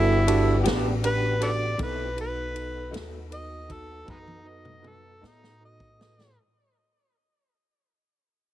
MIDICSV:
0, 0, Header, 1, 7, 480
1, 0, Start_track
1, 0, Tempo, 762583
1, 1128, Time_signature, 12, 3, 24, 8
1, 5373, End_track
2, 0, Start_track
2, 0, Title_t, "Harmonica"
2, 0, Program_c, 0, 22
2, 0, Note_on_c, 0, 64, 112
2, 388, Note_off_c, 0, 64, 0
2, 665, Note_on_c, 0, 71, 102
2, 889, Note_off_c, 0, 71, 0
2, 897, Note_on_c, 0, 69, 78
2, 897, Note_on_c, 0, 71, 78
2, 897, Note_on_c, 0, 74, 112
2, 937, Note_off_c, 0, 69, 0
2, 947, Note_off_c, 0, 71, 0
2, 1125, Note_off_c, 0, 74, 0
2, 1150, Note_on_c, 0, 71, 98
2, 1372, Note_off_c, 0, 71, 0
2, 1391, Note_on_c, 0, 71, 103
2, 1845, Note_off_c, 0, 71, 0
2, 2103, Note_on_c, 0, 75, 118
2, 2341, Note_on_c, 0, 69, 101
2, 2350, Note_off_c, 0, 75, 0
2, 2567, Note_off_c, 0, 69, 0
2, 2579, Note_on_c, 0, 56, 73
2, 2579, Note_on_c, 0, 59, 73
2, 2579, Note_on_c, 0, 63, 104
2, 2624, Note_off_c, 0, 56, 0
2, 2634, Note_off_c, 0, 59, 0
2, 2822, Note_on_c, 0, 75, 93
2, 2831, Note_off_c, 0, 63, 0
2, 3072, Note_on_c, 0, 69, 89
2, 3081, Note_off_c, 0, 75, 0
2, 3317, Note_on_c, 0, 63, 99
2, 3326, Note_off_c, 0, 69, 0
2, 3536, Note_off_c, 0, 63, 0
2, 3555, Note_on_c, 0, 75, 113
2, 3775, Note_off_c, 0, 75, 0
2, 3790, Note_on_c, 0, 75, 103
2, 4012, Note_off_c, 0, 75, 0
2, 5373, End_track
3, 0, Start_track
3, 0, Title_t, "Tine electric piano"
3, 0, Program_c, 1, 4
3, 0, Note_on_c, 1, 62, 72
3, 0, Note_on_c, 1, 66, 57
3, 0, Note_on_c, 1, 67, 61
3, 0, Note_on_c, 1, 69, 74
3, 104, Note_off_c, 1, 62, 0
3, 104, Note_off_c, 1, 66, 0
3, 106, Note_off_c, 1, 67, 0
3, 106, Note_off_c, 1, 69, 0
3, 172, Note_on_c, 1, 62, 74
3, 174, Note_on_c, 1, 66, 66
3, 175, Note_on_c, 1, 69, 88
3, 179, Note_on_c, 1, 67, 68
3, 350, Note_off_c, 1, 62, 0
3, 351, Note_off_c, 1, 66, 0
3, 352, Note_off_c, 1, 69, 0
3, 353, Note_off_c, 1, 67, 0
3, 413, Note_on_c, 1, 62, 64
3, 419, Note_on_c, 1, 66, 59
3, 420, Note_on_c, 1, 67, 60
3, 421, Note_on_c, 1, 71, 71
3, 591, Note_off_c, 1, 62, 0
3, 594, Note_off_c, 1, 66, 0
3, 594, Note_off_c, 1, 67, 0
3, 595, Note_off_c, 1, 71, 0
3, 653, Note_on_c, 1, 62, 65
3, 655, Note_on_c, 1, 66, 60
3, 655, Note_on_c, 1, 67, 60
3, 660, Note_on_c, 1, 71, 73
3, 831, Note_off_c, 1, 62, 0
3, 831, Note_off_c, 1, 66, 0
3, 831, Note_off_c, 1, 67, 0
3, 834, Note_off_c, 1, 71, 0
3, 883, Note_on_c, 1, 62, 52
3, 885, Note_on_c, 1, 67, 48
3, 887, Note_on_c, 1, 66, 52
3, 890, Note_on_c, 1, 69, 63
3, 1066, Note_off_c, 1, 62, 0
3, 1067, Note_off_c, 1, 67, 0
3, 1068, Note_off_c, 1, 66, 0
3, 1069, Note_off_c, 1, 69, 0
3, 1128, Note_on_c, 1, 63, 66
3, 1133, Note_on_c, 1, 66, 66
3, 1133, Note_on_c, 1, 69, 63
3, 1136, Note_on_c, 1, 71, 78
3, 1308, Note_off_c, 1, 63, 0
3, 1310, Note_off_c, 1, 66, 0
3, 1311, Note_off_c, 1, 69, 0
3, 1312, Note_off_c, 1, 71, 0
3, 1362, Note_on_c, 1, 63, 57
3, 1364, Note_on_c, 1, 66, 51
3, 1366, Note_on_c, 1, 69, 50
3, 1368, Note_on_c, 1, 71, 59
3, 1545, Note_off_c, 1, 63, 0
3, 1546, Note_off_c, 1, 66, 0
3, 1547, Note_off_c, 1, 69, 0
3, 1548, Note_off_c, 1, 71, 0
3, 1601, Note_on_c, 1, 63, 52
3, 1603, Note_on_c, 1, 66, 51
3, 1603, Note_on_c, 1, 69, 51
3, 1606, Note_on_c, 1, 71, 62
3, 1784, Note_off_c, 1, 63, 0
3, 1785, Note_off_c, 1, 66, 0
3, 1785, Note_off_c, 1, 69, 0
3, 1787, Note_off_c, 1, 71, 0
3, 1840, Note_on_c, 1, 66, 54
3, 1843, Note_on_c, 1, 63, 57
3, 1846, Note_on_c, 1, 69, 57
3, 1847, Note_on_c, 1, 71, 66
3, 2024, Note_off_c, 1, 66, 0
3, 2025, Note_off_c, 1, 63, 0
3, 2027, Note_off_c, 1, 69, 0
3, 2027, Note_off_c, 1, 71, 0
3, 2076, Note_on_c, 1, 66, 48
3, 2078, Note_on_c, 1, 63, 48
3, 2081, Note_on_c, 1, 69, 51
3, 2083, Note_on_c, 1, 71, 64
3, 2262, Note_off_c, 1, 66, 0
3, 2263, Note_off_c, 1, 63, 0
3, 2264, Note_off_c, 1, 69, 0
3, 2265, Note_off_c, 1, 71, 0
3, 2321, Note_on_c, 1, 63, 58
3, 2323, Note_on_c, 1, 69, 54
3, 2326, Note_on_c, 1, 66, 54
3, 2328, Note_on_c, 1, 71, 62
3, 2504, Note_off_c, 1, 63, 0
3, 2506, Note_off_c, 1, 69, 0
3, 2507, Note_off_c, 1, 66, 0
3, 2508, Note_off_c, 1, 71, 0
3, 2549, Note_on_c, 1, 63, 61
3, 2551, Note_on_c, 1, 66, 55
3, 2557, Note_on_c, 1, 69, 52
3, 2560, Note_on_c, 1, 71, 67
3, 2739, Note_off_c, 1, 63, 0
3, 2740, Note_off_c, 1, 66, 0
3, 2742, Note_off_c, 1, 69, 0
3, 2744, Note_off_c, 1, 71, 0
3, 2791, Note_on_c, 1, 63, 54
3, 2795, Note_on_c, 1, 66, 53
3, 2798, Note_on_c, 1, 69, 52
3, 2802, Note_on_c, 1, 71, 61
3, 2980, Note_off_c, 1, 63, 0
3, 2982, Note_off_c, 1, 66, 0
3, 2983, Note_off_c, 1, 69, 0
3, 2985, Note_off_c, 1, 71, 0
3, 3031, Note_on_c, 1, 63, 63
3, 3031, Note_on_c, 1, 66, 59
3, 3037, Note_on_c, 1, 71, 71
3, 3039, Note_on_c, 1, 69, 55
3, 3220, Note_off_c, 1, 63, 0
3, 3220, Note_off_c, 1, 66, 0
3, 3223, Note_off_c, 1, 71, 0
3, 3224, Note_off_c, 1, 69, 0
3, 3277, Note_on_c, 1, 63, 56
3, 3281, Note_on_c, 1, 66, 55
3, 3281, Note_on_c, 1, 69, 54
3, 3284, Note_on_c, 1, 71, 58
3, 3463, Note_off_c, 1, 63, 0
3, 3465, Note_off_c, 1, 66, 0
3, 3465, Note_off_c, 1, 69, 0
3, 3466, Note_off_c, 1, 71, 0
3, 3526, Note_on_c, 1, 66, 60
3, 3529, Note_on_c, 1, 63, 64
3, 3532, Note_on_c, 1, 69, 56
3, 3532, Note_on_c, 1, 71, 70
3, 3707, Note_off_c, 1, 66, 0
3, 3709, Note_off_c, 1, 63, 0
3, 3710, Note_off_c, 1, 69, 0
3, 3710, Note_off_c, 1, 71, 0
3, 3765, Note_on_c, 1, 63, 51
3, 3771, Note_on_c, 1, 69, 50
3, 3774, Note_on_c, 1, 66, 48
3, 3778, Note_on_c, 1, 71, 54
3, 3947, Note_off_c, 1, 63, 0
3, 3950, Note_off_c, 1, 69, 0
3, 3952, Note_off_c, 1, 66, 0
3, 3953, Note_off_c, 1, 71, 0
3, 5373, End_track
4, 0, Start_track
4, 0, Title_t, "Tonewheel organ"
4, 0, Program_c, 2, 16
4, 0, Note_on_c, 2, 59, 75
4, 0, Note_on_c, 2, 62, 67
4, 0, Note_on_c, 2, 66, 73
4, 0, Note_on_c, 2, 67, 67
4, 1105, Note_off_c, 2, 59, 0
4, 1107, Note_off_c, 2, 66, 0
4, 1108, Note_off_c, 2, 62, 0
4, 1109, Note_off_c, 2, 67, 0
4, 1130, Note_on_c, 2, 60, 69
4, 1130, Note_on_c, 2, 64, 68
4, 1135, Note_on_c, 2, 67, 67
4, 1138, Note_on_c, 2, 82, 65
4, 1369, Note_off_c, 2, 60, 0
4, 1369, Note_off_c, 2, 64, 0
4, 1371, Note_off_c, 2, 67, 0
4, 1371, Note_on_c, 2, 63, 73
4, 1372, Note_on_c, 2, 59, 68
4, 1373, Note_off_c, 2, 82, 0
4, 1373, Note_on_c, 2, 66, 70
4, 1374, Note_on_c, 2, 69, 74
4, 3985, Note_off_c, 2, 59, 0
4, 3985, Note_off_c, 2, 63, 0
4, 3986, Note_off_c, 2, 66, 0
4, 3987, Note_off_c, 2, 69, 0
4, 5373, End_track
5, 0, Start_track
5, 0, Title_t, "Clean electric guitar"
5, 0, Program_c, 3, 27
5, 404, Note_on_c, 3, 67, 84
5, 409, Note_on_c, 3, 62, 72
5, 410, Note_on_c, 3, 59, 72
5, 414, Note_on_c, 3, 52, 63
5, 550, Note_off_c, 3, 67, 0
5, 553, Note_off_c, 3, 59, 0
5, 553, Note_off_c, 3, 62, 0
5, 555, Note_off_c, 3, 52, 0
5, 1119, Note_on_c, 3, 47, 74
5, 1122, Note_on_c, 3, 54, 71
5, 1125, Note_on_c, 3, 57, 74
5, 1130, Note_on_c, 3, 63, 82
5, 1267, Note_off_c, 3, 47, 0
5, 1269, Note_off_c, 3, 54, 0
5, 1271, Note_off_c, 3, 57, 0
5, 1273, Note_off_c, 3, 63, 0
5, 1833, Note_on_c, 3, 63, 72
5, 1837, Note_on_c, 3, 57, 74
5, 1840, Note_on_c, 3, 54, 70
5, 1842, Note_on_c, 3, 47, 70
5, 1984, Note_off_c, 3, 63, 0
5, 1987, Note_off_c, 3, 57, 0
5, 1988, Note_off_c, 3, 54, 0
5, 1989, Note_off_c, 3, 47, 0
5, 3284, Note_on_c, 3, 63, 72
5, 3285, Note_on_c, 3, 57, 65
5, 3289, Note_on_c, 3, 54, 63
5, 3291, Note_on_c, 3, 47, 56
5, 3430, Note_off_c, 3, 63, 0
5, 3431, Note_off_c, 3, 57, 0
5, 3433, Note_off_c, 3, 54, 0
5, 3434, Note_off_c, 3, 47, 0
5, 5373, End_track
6, 0, Start_track
6, 0, Title_t, "Upright bass"
6, 0, Program_c, 4, 32
6, 0, Note_on_c, 4, 31, 94
6, 389, Note_off_c, 4, 31, 0
6, 412, Note_on_c, 4, 33, 85
6, 1109, Note_off_c, 4, 33, 0
6, 1128, Note_on_c, 4, 35, 86
6, 1827, Note_off_c, 4, 35, 0
6, 1845, Note_on_c, 4, 39, 89
6, 2545, Note_off_c, 4, 39, 0
6, 2570, Note_on_c, 4, 42, 89
6, 3268, Note_off_c, 4, 42, 0
6, 3291, Note_on_c, 4, 45, 84
6, 3989, Note_off_c, 4, 45, 0
6, 5373, End_track
7, 0, Start_track
7, 0, Title_t, "Drums"
7, 176, Note_on_c, 9, 51, 62
7, 239, Note_off_c, 9, 51, 0
7, 412, Note_on_c, 9, 51, 79
7, 422, Note_on_c, 9, 38, 102
7, 475, Note_off_c, 9, 51, 0
7, 485, Note_off_c, 9, 38, 0
7, 654, Note_on_c, 9, 51, 61
7, 716, Note_off_c, 9, 51, 0
7, 891, Note_on_c, 9, 51, 66
7, 954, Note_off_c, 9, 51, 0
7, 1127, Note_on_c, 9, 51, 82
7, 1129, Note_on_c, 9, 36, 108
7, 1189, Note_off_c, 9, 51, 0
7, 1192, Note_off_c, 9, 36, 0
7, 1371, Note_on_c, 9, 51, 63
7, 1434, Note_off_c, 9, 51, 0
7, 1609, Note_on_c, 9, 51, 64
7, 1672, Note_off_c, 9, 51, 0
7, 1850, Note_on_c, 9, 51, 83
7, 1861, Note_on_c, 9, 38, 108
7, 1913, Note_off_c, 9, 51, 0
7, 1924, Note_off_c, 9, 38, 0
7, 2089, Note_on_c, 9, 51, 69
7, 2152, Note_off_c, 9, 51, 0
7, 2326, Note_on_c, 9, 51, 58
7, 2328, Note_on_c, 9, 36, 66
7, 2389, Note_off_c, 9, 51, 0
7, 2390, Note_off_c, 9, 36, 0
7, 2569, Note_on_c, 9, 36, 101
7, 2570, Note_on_c, 9, 48, 60
7, 2631, Note_off_c, 9, 36, 0
7, 2633, Note_off_c, 9, 48, 0
7, 2691, Note_on_c, 9, 48, 57
7, 2754, Note_off_c, 9, 48, 0
7, 2928, Note_on_c, 9, 47, 62
7, 2991, Note_off_c, 9, 47, 0
7, 3049, Note_on_c, 9, 47, 70
7, 3112, Note_off_c, 9, 47, 0
7, 3299, Note_on_c, 9, 38, 82
7, 3362, Note_off_c, 9, 38, 0
7, 3423, Note_on_c, 9, 38, 65
7, 3486, Note_off_c, 9, 38, 0
7, 3652, Note_on_c, 9, 36, 83
7, 3715, Note_off_c, 9, 36, 0
7, 3783, Note_on_c, 9, 38, 104
7, 3846, Note_off_c, 9, 38, 0
7, 3906, Note_on_c, 9, 38, 84
7, 3969, Note_off_c, 9, 38, 0
7, 5373, End_track
0, 0, End_of_file